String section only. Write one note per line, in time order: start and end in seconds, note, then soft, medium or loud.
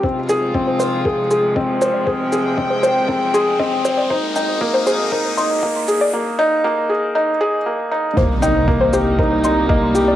0.03 6.10 C3 medium
0.03 4.06 F3 medium
0.03 6.10 G#3 medium
0.03 2.05 F4 medium
2.07 4.08 G5 medium
4.10 6.12 A#3 medium
4.10 6.12 D#4 medium
8.17 10.16 C3 medium
8.17 10.16 G3 medium
8.17 10.16 A#3 medium
8.17 10.16 D#4 medium